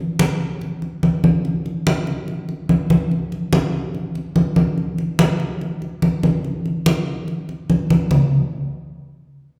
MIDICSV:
0, 0, Header, 1, 2, 480
1, 0, Start_track
1, 0, Tempo, 416638
1, 1666, Time_signature, 4, 2, 24, 8
1, 11050, End_track
2, 0, Start_track
2, 0, Title_t, "Drums"
2, 224, Note_on_c, 9, 63, 92
2, 339, Note_off_c, 9, 63, 0
2, 707, Note_on_c, 9, 63, 33
2, 823, Note_off_c, 9, 63, 0
2, 946, Note_on_c, 9, 63, 31
2, 1061, Note_off_c, 9, 63, 0
2, 1187, Note_on_c, 9, 63, 78
2, 1302, Note_off_c, 9, 63, 0
2, 1426, Note_on_c, 9, 63, 78
2, 1541, Note_off_c, 9, 63, 0
2, 1669, Note_on_c, 9, 63, 31
2, 1784, Note_off_c, 9, 63, 0
2, 1909, Note_on_c, 9, 63, 31
2, 2024, Note_off_c, 9, 63, 0
2, 2151, Note_on_c, 9, 63, 93
2, 2266, Note_off_c, 9, 63, 0
2, 2385, Note_on_c, 9, 63, 34
2, 2500, Note_off_c, 9, 63, 0
2, 2625, Note_on_c, 9, 63, 36
2, 2740, Note_off_c, 9, 63, 0
2, 2865, Note_on_c, 9, 63, 32
2, 2980, Note_off_c, 9, 63, 0
2, 3103, Note_on_c, 9, 63, 77
2, 3218, Note_off_c, 9, 63, 0
2, 3343, Note_on_c, 9, 63, 88
2, 3458, Note_off_c, 9, 63, 0
2, 3588, Note_on_c, 9, 63, 31
2, 3703, Note_off_c, 9, 63, 0
2, 3826, Note_on_c, 9, 63, 32
2, 3941, Note_off_c, 9, 63, 0
2, 4062, Note_on_c, 9, 63, 92
2, 4178, Note_off_c, 9, 63, 0
2, 4545, Note_on_c, 9, 63, 31
2, 4661, Note_off_c, 9, 63, 0
2, 4785, Note_on_c, 9, 63, 32
2, 4900, Note_off_c, 9, 63, 0
2, 5019, Note_on_c, 9, 63, 75
2, 5135, Note_off_c, 9, 63, 0
2, 5256, Note_on_c, 9, 63, 79
2, 5371, Note_off_c, 9, 63, 0
2, 5503, Note_on_c, 9, 63, 31
2, 5618, Note_off_c, 9, 63, 0
2, 5742, Note_on_c, 9, 63, 33
2, 5857, Note_off_c, 9, 63, 0
2, 5979, Note_on_c, 9, 63, 98
2, 6094, Note_off_c, 9, 63, 0
2, 6219, Note_on_c, 9, 63, 33
2, 6334, Note_off_c, 9, 63, 0
2, 6468, Note_on_c, 9, 63, 32
2, 6583, Note_off_c, 9, 63, 0
2, 6703, Note_on_c, 9, 63, 34
2, 6818, Note_off_c, 9, 63, 0
2, 6939, Note_on_c, 9, 63, 75
2, 7055, Note_off_c, 9, 63, 0
2, 7182, Note_on_c, 9, 63, 80
2, 7297, Note_off_c, 9, 63, 0
2, 7424, Note_on_c, 9, 63, 32
2, 7540, Note_off_c, 9, 63, 0
2, 7668, Note_on_c, 9, 63, 31
2, 7783, Note_off_c, 9, 63, 0
2, 7905, Note_on_c, 9, 63, 89
2, 8020, Note_off_c, 9, 63, 0
2, 8384, Note_on_c, 9, 63, 32
2, 8499, Note_off_c, 9, 63, 0
2, 8628, Note_on_c, 9, 63, 31
2, 8743, Note_off_c, 9, 63, 0
2, 8867, Note_on_c, 9, 63, 73
2, 8982, Note_off_c, 9, 63, 0
2, 9106, Note_on_c, 9, 63, 78
2, 9222, Note_off_c, 9, 63, 0
2, 9341, Note_on_c, 9, 64, 90
2, 9456, Note_off_c, 9, 64, 0
2, 11050, End_track
0, 0, End_of_file